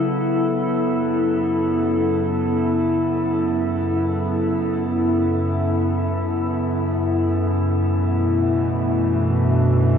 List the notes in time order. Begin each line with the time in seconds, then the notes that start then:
Already playing: C#3 F#3 B3 E4 A4
0.86 F#2
7.83 E3
7.90 A3
7.94 B2
9.02 D4
9.26 F#4